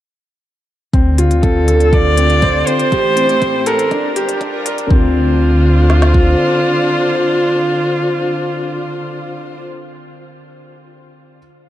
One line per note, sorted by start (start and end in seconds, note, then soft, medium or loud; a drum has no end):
0.93 2.63 D2 medium
0.93 2.92 D3 medium
0.93 1.08 C4 medium
0.93 kick medium
0.93 closed hi-hat soft
1.18 1.42 F4 medium
1.18 closed hi-hat medium
1.31 closed hi-hat soft
1.43 1.67 C4 medium
1.43 1.95 A4 medium
1.43 kick medium
1.43 closed hi-hat soft
1.53 3.32 D4 medium
1.68 1.82 A4 medium
1.68 closed hi-hat medium
1.80 2.92 F4 medium
1.80 4.31 C5 medium
1.80 closed hi-hat soft
1.93 2.69 D5 loud
1.93 kick medium
1.93 closed hi-hat soft
2.18 2.41 C4 medium
2.18 closed hi-hat medium
2.30 closed hi-hat soft
2.42 2.66 C5 medium
2.42 kick loud
2.42 closed hi-hat soft
2.67 2.91 C4 medium
2.67 3.69 C5 loud
2.67 closed hi-hat medium
2.79 closed hi-hat soft
2.92 3.93 A1 medium
2.92 3.92 A3 medium
2.92 3.16 G4 medium
2.92 kick medium
2.92 closed hi-hat soft
3.12 3.92 E4 medium
3.17 3.41 C4 medium
3.17 closed hi-hat medium
3.29 closed hi-hat soft
3.37 4.31 G4 medium
3.42 kick loud
3.42 closed hi-hat soft
3.66 3.81 A4 loud
3.66 4.17 A#4 medium
3.66 closed hi-hat medium
3.79 closed hi-hat soft
3.91 4.36 G1 loud
3.91 4.91 G3 medium
3.91 4.06 D4 medium
3.91 kick loud
3.91 closed hi-hat soft
4.16 4.40 G4 loud
4.16 closed hi-hat medium
4.27 4.91 D4 medium
4.27 closed hi-hat soft
4.36 4.91 F4 medium
4.36 4.90 A#4 medium
4.41 4.86 F1 medium
4.41 4.65 D4 medium
4.41 kick loud
4.41 closed hi-hat soft
4.66 4.80 A#4 medium
4.66 closed hi-hat medium
4.78 closed hi-hat soft
4.90 6.35 D2 medium
4.90 9.64 D3 medium
4.90 5.14 C4 medium
4.90 9.64 F4 loud
4.90 kick loud
4.98 9.63 D4 medium
5.06 9.64 F4 medium
5.13 9.63 C5 medium
5.90 snare medium
6.02 snare medium
6.14 kick medium